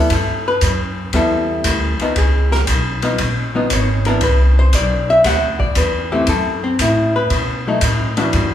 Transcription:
Already playing: hollow-body jazz guitar A4
0.10 upright bass G2, hollow-body jazz guitar A4, kick, ride
0.48 hollow-body jazz guitar B4
0.61 upright bass F#2, kick, hi-hat pedal, ride
1.13 upright bass E2, hollow-body jazz guitar G3 B3 E4 A4, kick, ride
1.64 upright bass D2, kick, hi-hat pedal, ride
1.99 hollow-body jazz guitar F3 B3 D#4, muted upright bass stroke, ride
2.16 upright bass C#2, hollow-body jazz guitar G#4, kick, ride
2.52 hollow-body jazz guitar A#4, snare
2.67 upright bass B1, kick, hi-hat pedal, ride
3.02 hollow-body jazz guitar F3 B3 D#4, ride
3.18 upright bass A#1, kick, ride
3.55 hollow-body jazz guitar F3 B3 D#4
3.70 upright bass G#1, hollow-body jazz guitar C#5, kick, hi-hat pedal, ride
4.05 hollow-body jazz guitar E3 B3 D4 A#4, ride
4.21 upright bass C2, hollow-body jazz guitar B4, kick, ride
4.59 hollow-body jazz guitar C5
4.73 upright bass B1, hollow-body jazz guitar D5, kick, hi-hat pedal, ride
5.10 hollow-body jazz guitar E5
5.24 upright bass D2, hollow-body jazz guitar F#5, kick, snare, ride
5.60 hollow-body jazz guitar D5, kick
5.75 upright bass E2, hollow-body jazz guitar B4, kick, hi-hat pedal, ride
6.12 hollow-body jazz guitar E3 A3 C4 G4
6.27 upright bass F#2, hollow-body jazz guitar A4, kick, ride
6.64 hollow-body jazz guitar C4
6.79 upright bass A2, hollow-body jazz guitar E4, kick, hi-hat pedal, ride
7.16 hollow-body jazz guitar B4
7.30 upright bass B2, kick, ride
7.67 hollow-body jazz guitar F#3 A3 D#4
7.81 upright bass A2, kick, hi-hat pedal, ride
8.17 hollow-body jazz guitar E3 G3 D4 F#4, ride
8.33 upright bass G2, kick, ride

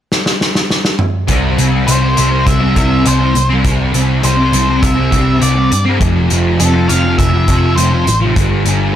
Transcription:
0.12 snare
0.26 snare
0.41 snare
0.55 snare
0.70 snare
0.85 snare
0.99 mid tom
1.27 picked electric bass C2, distorted electric guitar C3 G3 C4, kick, closed hi-hat
1.57 picked electric bass C2, distorted electric guitar C3 G3 C4, closed hi-hat
1.87 picked electric bass C2, distorted electric guitar C3 G3 C4, lead electric guitar C5, closed hi-hat
2.01 distorted electric guitar G3 C4
2.16 picked electric bass C2, distorted electric guitar C3 G3 C4, closed hi-hat
2.31 distorted electric guitar G3 C4
2.46 picked electric bass C2, lead electric guitar E5, kick, closed hi-hat
2.60 distorted electric guitar G3 C4
2.74 picked electric bass C2, distorted electric guitar C3 G3 C4, lead electric guitar E5, kick, closed hi-hat
3.05 picked electric bass C2, distorted electric guitar C3 G3 C4, lead electric guitar C5, closed hi-hat
3.19 distorted electric guitar G3 C4
3.34 picked electric bass C2, muted distorted electric guitar stroke, closed hi-hat
3.49 distorted electric guitar G3 C4
3.63 picked electric bass C2, distorted electric guitar C3 G3 C4, kick, closed hi-hat
3.92 picked electric bass C2, distorted electric guitar C3 G3 C4, closed hi-hat
4.23 picked electric bass C2, distorted electric guitar C3 G3 C4, lead electric guitar C5, closed hi-hat
4.37 distorted electric guitar G3 C4
4.53 picked electric bass C2, distorted electric guitar C3 G3 C4, closed hi-hat
4.67 distorted electric guitar G3 C4
4.82 picked electric bass C2, lead electric guitar E5, kick, closed hi-hat
4.95 distorted electric guitar C4
5.00 distorted electric guitar G3
5.10 picked electric bass C2, distorted electric guitar C3 G3 C4, kick, closed hi-hat
5.39 picked electric bass C2, distorted electric guitar C3 G3 C4, lead electric guitar D5, closed hi-hat
5.55 distorted electric guitar G3 C4
5.71 picked electric bass G2, muted distorted electric guitar stroke, closed hi-hat
5.85 distorted electric guitar G3 C4
6.00 picked electric bass F1, distorted electric guitar F2 C3 F3, kick, closed hi-hat
6.29 picked electric bass F1, distorted electric guitar F2 C3 F3, closed hi-hat
6.59 picked electric bass F1, distorted electric guitar F2 C3 F3, lead electric guitar A4, closed hi-hat
6.73 distorted electric guitar C3 F3
6.89 picked electric bass F1, distorted electric guitar F2 C3 F3, lead electric guitar F5, closed hi-hat
7.04 distorted electric guitar C3 F3
7.18 picked electric bass F1, lead electric guitar E5, kick, closed hi-hat
7.33 distorted electric guitar C3 F3
7.47 picked electric bass F1, distorted electric guitar F2 C3 F3, kick, closed hi-hat
7.76 picked electric bass F1, distorted electric guitar F2 C3 F3, lead electric guitar C5, closed hi-hat
7.91 distorted electric guitar C3 F3
8.06 picked electric bass A1, muted distorted electric guitar stroke, closed hi-hat
8.20 distorted electric guitar C3 F3
8.35 picked electric bass G1, distorted electric guitar G2 D3 G3, kick, closed hi-hat
8.64 picked electric bass G1, distorted electric guitar G2 D3 G3, closed hi-hat

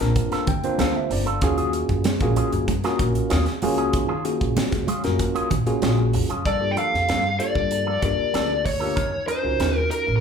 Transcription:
0.00 upright bass A#1, tine electric piano A#3 C4 D4 F4 A#4, muted clean electric guitar stroke, snare, closed hi-hat
0.16 muted clean electric guitar stroke, kick, closed hi-hat, muted conga
0.32 clean electric guitar A#3 C4 F4 A4, muted upright bass stroke, snare, closed hi-hat
0.47 upright bass D2, tine electric piano G5, muted clean electric guitar stroke, kick, closed hi-hat, low conga
0.64 tine electric piano A#3 C4 D4 F4 C5, closed hi-hat
0.78 upright bass D2, clean electric guitar A#3 C4 F4 A4, tine electric piano F5, snare, closed hi-hat, muted conga, high conga
0.95 tine electric piano E5, muted clean electric guitar stroke
1.10 upright bass G1, tine electric piano D5, muted clean electric guitar stroke, open hi-hat
1.26 clean electric guitar C4 F4 A4, closed hi-hat
1.41 upright bass D#2, clean electric guitar F#3 C#4 F4 G#4, tine electric piano A#3 C#4 F4 F#4 G#4, kick, closed hi-hat, muted conga
1.58 clean electric guitar F#3 C#4 F4 G#4, closed hi-hat
1.73 muted clean electric guitar stroke, closed hi-hat, muted conga
1.89 upright bass F#2, muted clean electric guitar stroke, kick, closed hi-hat
2.04 snare, closed hi-hat, high conga
2.20 upright bass A#1, tine electric piano A#3 C#4 F4 F#4 G#4, muted clean electric guitar stroke, kick, closed hi-hat
2.36 clean electric guitar F#3 C#4 F4 G#4, muted upright bass stroke, closed hi-hat
2.52 upright bass F#2, muted clean electric guitar stroke, closed hi-hat
2.68 muted clean electric guitar stroke, kick, closed hi-hat, muted conga, high conga
2.84 clean electric guitar F#3 C#4 F4 G#4, tine electric piano A#3 C#4 F4 F#4 A#4, snare, closed hi-hat
2.99 upright bass A#1, muted clean electric guitar stroke, kick, closed hi-hat
3.15 closed hi-hat
3.30 upright bass D#2, clean electric guitar F#3 C#4 F4 G#4, snare, closed hi-hat, muted conga
3.46 muted clean electric guitar stroke, snare, closed hi-hat
3.62 upright bass C#2, tine electric piano A#3 C#4 F4 F#4 G#4, muted clean electric guitar stroke, open hi-hat, high conga
3.77 clean electric guitar C#4 F4 G#4, closed hi-hat
3.93 upright bass D#3, kick, closed hi-hat
4.08 clean electric guitar F#3 C#4 F4 G#4
4.25 tine electric piano A#3 C#4 F4 F#4 G#4, muted clean electric guitar stroke, closed hi-hat, muted conga
4.40 upright bass A#1, muted clean electric guitar stroke, kick, closed hi-hat
4.57 muted upright bass stroke, snare, closed hi-hat, high conga, low conga
4.72 upright bass C#2, muted clean electric guitar stroke, kick, snare, closed hi-hat
4.87 clean electric guitar F#3 C#4 F4 G#4, closed hi-hat, high conga
5.04 upright bass F#2, tine electric piano A#3 C#4 F4 F#4 A#4, muted clean electric guitar stroke, snare, closed hi-hat
5.19 muted clean electric guitar stroke, kick, closed hi-hat, muted conga
5.35 clean electric guitar F#3 C#4 F4 G#4, muted upright bass stroke, closed hi-hat
5.50 upright bass A#1, muted clean electric guitar stroke, kick, closed hi-hat, low conga
5.67 tine electric piano A#3 C#4 F4 F#4 G#4, closed hi-hat
5.82 upright bass A#1, clean electric guitar F#3 C#4 F4 G#4, snare, closed hi-hat, muted conga, high conga
5.99 muted clean electric guitar stroke
6.13 upright bass F2, muted clean electric guitar stroke, open hi-hat
6.29 upright bass F#2, clean electric guitar C#4 F4 G#4, closed hi-hat
6.45 upright bass G2, clean electric guitar F3 A#3 D4 A4, lead electric guitar D5, kick, closed hi-hat
6.61 tine electric piano A#3 D4 F4 G4 A4, muted clean electric guitar stroke
6.71 lead electric guitar G5
6.76 clean electric guitar F3 A#3 D4 A4, lead electric guitar F5, closed hi-hat
6.92 upright bass F2, muted clean electric guitar stroke, snare
7.08 upright bass G2, clean electric guitar F3 A#3 D4 A4, snare, closed hi-hat
7.24 muted clean electric guitar stroke
7.39 tine electric piano A#3 D4 F4 G4 A4, lead electric guitar D5, closed hi-hat
7.55 upright bass G2, muted clean electric guitar stroke, kick
7.71 muted clean electric guitar stroke, closed hi-hat
7.86 clean electric guitar F3 A#3 D4 A4
8.02 upright bass G2, tine electric piano A#3 D4 F4 G4 A#4, lead electric guitar D5, kick, closed hi-hat
8.19 muted upright bass stroke
8.33 upright bass D2, clean electric guitar F3 A#3 D4 A4, snare, closed hi-hat
8.49 muted clean electric guitar stroke
8.64 lead electric guitar C#5, muted clean electric guitar stroke, kick, open hi-hat
8.80 tine electric piano A#3 D4 F4 G4 A#4, clean electric guitar A#3 D4 A4
8.95 upright bass D#2, clean electric guitar F#3 C#4 D#4 A#4, kick, closed hi-hat
9.12 muted clean electric guitar stroke
9.27 clean electric guitar F#3 C#4 D#4 A#4, lead electric guitar C5, closed hi-hat
9.43 upright bass C#2, tine electric piano C#4 D#4 F4 F#4 A#4, muted clean electric guitar stroke
9.59 upright bass D#2, clean electric guitar F#3 C#4 D#4 A#4, snare, closed hi-hat
9.75 lead electric guitar A#4, muted clean electric guitar stroke
9.91 lead electric guitar A#4, closed hi-hat
10.06 upright bass A1, muted clean electric guitar stroke
10.16 lead electric guitar A#4

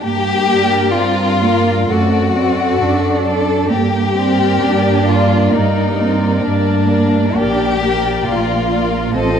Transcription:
0.01 double bass section G2, cello section A#3, violin section G4
0.51 viola section D4 A#4, violin section D5
0.97 double bass section G2, cello section C4, violin section F4
1.43 cello section A#3, viola section D4 A#4, violin section D5
1.88 double bass section F#2, cello section A3, viola section C4 A4, violin section F#4 D5
2.34 cello section C4, viola section C4 A4, violin section D5
2.79 double bass section F#2, cello section D4
3.25 viola section C4 A4, violin section A4 D5
3.70 double bass section G2, cello section A#3, violin section G4
4.16 viola section A#3 A#4, cello section C4, violin section D5
4.61 double bass section G2, cello section D4
5.07 viola section A#3 A#4, violin section F4 D5
5.53 double bass section G2, cello section A#3, violin section D#4
5.98 viola section A#3 A#4, cello section C4, violin section D5
6.43 double bass section G2, cello section A#3, violin section D4
6.89 viola section A#3 A#4, violin section D5
7.37 double bass section A#1, viola section A#3 A#4, cello section D4, violin section G4 D5
7.82 cello section A#3, viola section A#3 A#4, violin section D5
8.26 double bass section A#1, violin section F4
8.71 viola section A#3 A#4, violin section D5
9.14 double bass section A1, viola section F3 C5, cello section C4, violin section A4 D#5

